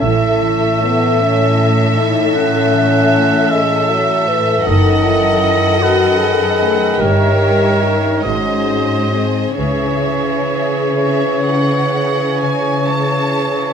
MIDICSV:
0, 0, Header, 1, 10, 480
1, 0, Start_track
1, 0, Key_signature, 4, "minor"
1, 0, Tempo, 774194
1, 7, Time_signature, 12, 3, 24, 8
1, 3847, Tempo, 811908
1, 4807, Tempo, 840336
1, 5287, Tempo, 933126
1, 7207, Tempo, 894188
1, 7920, End_track
2, 0, Start_track
2, 0, Title_t, "Violin section"
2, 0, Program_c, 0, 48
2, 13, Note_on_c, 0, 76, 38
2, 2869, Note_off_c, 0, 76, 0
2, 2889, Note_on_c, 0, 78, 41
2, 4296, Note_off_c, 0, 78, 0
2, 4327, Note_on_c, 0, 76, 36
2, 5046, Note_off_c, 0, 76, 0
2, 5048, Note_on_c, 0, 75, 33
2, 5745, Note_off_c, 0, 75, 0
2, 5758, Note_on_c, 0, 76, 29
2, 6427, Note_off_c, 0, 76, 0
2, 6494, Note_on_c, 0, 76, 31
2, 6716, Note_off_c, 0, 76, 0
2, 6730, Note_on_c, 0, 78, 34
2, 7198, Note_off_c, 0, 78, 0
2, 7217, Note_on_c, 0, 80, 33
2, 7449, Note_off_c, 0, 80, 0
2, 7456, Note_on_c, 0, 81, 35
2, 7920, Note_off_c, 0, 81, 0
2, 7920, End_track
3, 0, Start_track
3, 0, Title_t, "Oboe"
3, 0, Program_c, 1, 68
3, 5, Note_on_c, 1, 76, 41
3, 1267, Note_off_c, 1, 76, 0
3, 1455, Note_on_c, 1, 78, 42
3, 2173, Note_on_c, 1, 76, 46
3, 2183, Note_off_c, 1, 78, 0
3, 2888, Note_off_c, 1, 76, 0
3, 2892, Note_on_c, 1, 75, 41
3, 3612, Note_on_c, 1, 71, 40
3, 3621, Note_off_c, 1, 75, 0
3, 4321, Note_on_c, 1, 70, 37
3, 4330, Note_off_c, 1, 71, 0
3, 5033, Note_off_c, 1, 70, 0
3, 5037, Note_on_c, 1, 75, 33
3, 5577, Note_off_c, 1, 75, 0
3, 5755, Note_on_c, 1, 73, 30
3, 7920, Note_off_c, 1, 73, 0
3, 7920, End_track
4, 0, Start_track
4, 0, Title_t, "Violin section"
4, 0, Program_c, 2, 48
4, 1, Note_on_c, 2, 76, 43
4, 2864, Note_off_c, 2, 76, 0
4, 2894, Note_on_c, 2, 75, 42
4, 4322, Note_off_c, 2, 75, 0
4, 4327, Note_on_c, 2, 73, 38
4, 5045, Note_off_c, 2, 73, 0
4, 5046, Note_on_c, 2, 72, 35
4, 5756, Note_on_c, 2, 73, 31
4, 5757, Note_off_c, 2, 72, 0
4, 7920, Note_off_c, 2, 73, 0
4, 7920, End_track
5, 0, Start_track
5, 0, Title_t, "Viola section"
5, 0, Program_c, 3, 48
5, 13, Note_on_c, 3, 69, 37
5, 2869, Note_off_c, 3, 69, 0
5, 2888, Note_on_c, 3, 69, 43
5, 4296, Note_off_c, 3, 69, 0
5, 4319, Note_on_c, 3, 70, 37
5, 5036, Note_on_c, 3, 68, 33
5, 5042, Note_off_c, 3, 70, 0
5, 7920, Note_off_c, 3, 68, 0
5, 7920, End_track
6, 0, Start_track
6, 0, Title_t, "Harp"
6, 0, Program_c, 4, 46
6, 0, Note_on_c, 4, 61, 31
6, 0, Note_on_c, 4, 73, 29
6, 8, Note_on_c, 4, 45, 38
6, 257, Note_on_c, 4, 52, 30
6, 495, Note_on_c, 4, 69, 34
6, 728, Note_off_c, 4, 73, 0
6, 736, Note_on_c, 4, 73, 30
6, 971, Note_on_c, 4, 76, 34
6, 1208, Note_off_c, 4, 69, 0
6, 1215, Note_on_c, 4, 69, 35
6, 1445, Note_off_c, 4, 45, 0
6, 1452, Note_on_c, 4, 45, 36
6, 1684, Note_off_c, 4, 52, 0
6, 1692, Note_on_c, 4, 52, 32
6, 1926, Note_off_c, 4, 69, 0
6, 1933, Note_on_c, 4, 69, 34
6, 2165, Note_off_c, 4, 73, 0
6, 2173, Note_on_c, 4, 73, 37
6, 2174, Note_off_c, 4, 61, 0
6, 2406, Note_off_c, 4, 76, 0
6, 2413, Note_on_c, 4, 76, 36
6, 2650, Note_off_c, 4, 69, 0
6, 2657, Note_on_c, 4, 69, 37
6, 2892, Note_on_c, 4, 42, 40
6, 2908, Note_off_c, 4, 45, 0
6, 2908, Note_off_c, 4, 52, 0
6, 2908, Note_off_c, 4, 73, 0
6, 2909, Note_off_c, 4, 76, 0
6, 3138, Note_on_c, 4, 54, 33
6, 3366, Note_off_c, 4, 69, 0
6, 3374, Note_on_c, 4, 69, 31
6, 3613, Note_on_c, 4, 75, 31
6, 3847, Note_off_c, 4, 69, 0
6, 3854, Note_on_c, 4, 69, 33
6, 4088, Note_on_c, 4, 57, 34
6, 4325, Note_on_c, 4, 43, 37
6, 4341, Note_off_c, 4, 42, 0
6, 4343, Note_off_c, 4, 75, 0
6, 4344, Note_off_c, 4, 54, 0
6, 4344, Note_off_c, 4, 57, 0
6, 4344, Note_off_c, 4, 69, 0
6, 4571, Note_on_c, 4, 61, 27
6, 4810, Note_on_c, 4, 70, 26
6, 4815, Note_on_c, 4, 76, 28
6, 5045, Note_on_c, 4, 44, 35
6, 5064, Note_off_c, 4, 43, 0
6, 5064, Note_off_c, 4, 70, 0
6, 5065, Note_off_c, 4, 61, 0
6, 5065, Note_off_c, 4, 76, 0
6, 5290, Note_on_c, 4, 60, 25
6, 5517, Note_on_c, 4, 66, 22
6, 5521, Note_on_c, 4, 75, 27
6, 5757, Note_on_c, 4, 49, 29
6, 5777, Note_off_c, 4, 44, 0
6, 5777, Note_off_c, 4, 66, 0
6, 5778, Note_off_c, 4, 60, 0
6, 5779, Note_off_c, 4, 75, 0
6, 6004, Note_on_c, 4, 56, 23
6, 6249, Note_on_c, 4, 64, 24
6, 6493, Note_on_c, 4, 73, 23
6, 6729, Note_off_c, 4, 64, 0
6, 6735, Note_on_c, 4, 64, 23
6, 6973, Note_on_c, 4, 61, 24
6, 7209, Note_off_c, 4, 49, 0
6, 7216, Note_on_c, 4, 49, 24
6, 7448, Note_off_c, 4, 56, 0
6, 7455, Note_on_c, 4, 56, 21
6, 7686, Note_off_c, 4, 64, 0
6, 7693, Note_on_c, 4, 64, 23
6, 7920, Note_off_c, 4, 49, 0
6, 7920, Note_off_c, 4, 56, 0
6, 7920, Note_off_c, 4, 61, 0
6, 7920, Note_off_c, 4, 64, 0
6, 7920, Note_off_c, 4, 73, 0
6, 7920, End_track
7, 0, Start_track
7, 0, Title_t, "French horn section"
7, 0, Program_c, 5, 60
7, 25, Note_on_c, 5, 64, 58
7, 507, Note_off_c, 5, 64, 0
7, 509, Note_on_c, 5, 59, 45
7, 739, Note_off_c, 5, 59, 0
7, 751, Note_on_c, 5, 61, 48
7, 1219, Note_on_c, 5, 63, 55
7, 1224, Note_off_c, 5, 61, 0
7, 1457, Note_on_c, 5, 61, 67
7, 1459, Note_off_c, 5, 63, 0
7, 2629, Note_off_c, 5, 61, 0
7, 2890, Note_on_c, 5, 63, 53
7, 3114, Note_off_c, 5, 63, 0
7, 3126, Note_on_c, 5, 64, 59
7, 3604, Note_off_c, 5, 64, 0
7, 3605, Note_on_c, 5, 66, 56
7, 3836, Note_on_c, 5, 68, 57
7, 3846, Note_off_c, 5, 66, 0
7, 4315, Note_on_c, 5, 67, 62
7, 4316, Note_off_c, 5, 68, 0
7, 4803, Note_off_c, 5, 67, 0
7, 4806, Note_on_c, 5, 63, 47
7, 5040, Note_on_c, 5, 61, 37
7, 5042, Note_off_c, 5, 63, 0
7, 5514, Note_off_c, 5, 61, 0
7, 5514, Note_on_c, 5, 60, 36
7, 5743, Note_on_c, 5, 61, 39
7, 5755, Note_off_c, 5, 60, 0
7, 7898, Note_off_c, 5, 61, 0
7, 7920, End_track
8, 0, Start_track
8, 0, Title_t, "Bassoon"
8, 0, Program_c, 6, 70
8, 0, Note_on_c, 6, 57, 43
8, 1289, Note_off_c, 6, 57, 0
8, 1462, Note_on_c, 6, 57, 47
8, 2154, Note_off_c, 6, 57, 0
8, 2181, Note_on_c, 6, 56, 43
8, 2418, Note_on_c, 6, 54, 42
8, 2427, Note_off_c, 6, 56, 0
8, 2656, Note_on_c, 6, 52, 43
8, 2665, Note_off_c, 6, 54, 0
8, 2892, Note_off_c, 6, 52, 0
8, 2899, Note_on_c, 6, 51, 44
8, 3597, Note_off_c, 6, 51, 0
8, 3614, Note_on_c, 6, 51, 44
8, 5046, Note_on_c, 6, 54, 34
8, 5055, Note_off_c, 6, 51, 0
8, 5591, Note_off_c, 6, 54, 0
8, 5758, Note_on_c, 6, 52, 33
8, 7920, Note_off_c, 6, 52, 0
8, 7920, End_track
9, 0, Start_track
9, 0, Title_t, "Cello section"
9, 0, Program_c, 7, 48
9, 6, Note_on_c, 7, 45, 42
9, 2888, Note_on_c, 7, 42, 43
9, 2891, Note_off_c, 7, 45, 0
9, 4296, Note_off_c, 7, 42, 0
9, 4320, Note_on_c, 7, 43, 42
9, 5028, Note_off_c, 7, 43, 0
9, 5044, Note_on_c, 7, 44, 35
9, 5756, Note_on_c, 7, 49, 33
9, 5757, Note_off_c, 7, 44, 0
9, 7920, Note_off_c, 7, 49, 0
9, 7920, End_track
10, 0, Start_track
10, 0, Title_t, "Double bass section"
10, 0, Program_c, 8, 48
10, 9, Note_on_c, 8, 33, 40
10, 474, Note_off_c, 8, 33, 0
10, 2893, Note_on_c, 8, 30, 46
10, 3346, Note_off_c, 8, 30, 0
10, 4323, Note_on_c, 8, 31, 36
10, 4784, Note_off_c, 8, 31, 0
10, 5044, Note_on_c, 8, 32, 31
10, 5496, Note_off_c, 8, 32, 0
10, 5753, Note_on_c, 8, 37, 30
10, 6224, Note_off_c, 8, 37, 0
10, 7920, End_track
0, 0, End_of_file